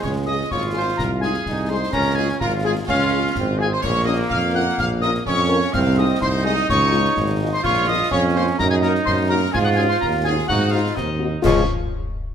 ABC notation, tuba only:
X:1
M:2/4
L:1/8
Q:1/4=126
K:Db
V:1 name="Tuba" clef=bass
D,,2 A,,,2 | C,,2 C,,2 | D,,2 A,,,2 | D,,2 A,,,2 |
B,,,2 F,,2 | B,,,2 F,,2 | C,,2 C,,2 | D,,2 A,,,2 |
B,,,2 F,,2 | G,,2 G,,2 | A,,2 E,,2 | A,,2 E,,2 |
D,, z3 |]